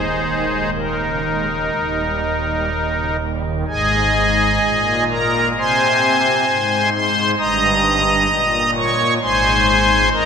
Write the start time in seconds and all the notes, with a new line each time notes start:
Already playing: D#1 D#2 D#4 G#4 C5
0.00 G#3
0.23 D#3
0.48 G#3
0.74 D#3 D#4 A#4
1.00 C#3
1.26 G#3
1.50 D#3
1.73 D#1 D#2
1.98 G3
2.23 D#3
2.47 G3
2.72 D#3
2.96 C#3
3.21 G3
3.45 D#3
3.67 G#1 G#2 G#4 D#5 G#5
4.62 A#2
5.09 A#4 A#5
5.57 C3 C5 G#5 C6
6.46 G#2
6.92 C5 C6
7.38 G1 G2 D#5 A#5 D#6
8.31 A#2
8.76 C#5 C#6
9.21 G#1 G#2 C5 G#5 C6
10.12 D#2 A#4 D#5 A#5